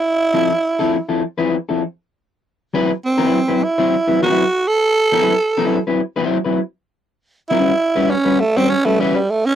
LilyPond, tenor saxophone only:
\new Staff \with { instrumentName = "Tenor saxophone" } { \time 4/4 \key fis \phrygian \tempo 4 = 100 e'4.~ e'16 r2 r16 | r4 c'4 e'4 fis'8. a'16~ | a'4.~ a'16 r2 r16 | r8 e'4 cis'8 a16 c'16 cis'16 a16 e16 g16 a16 cis'16 | }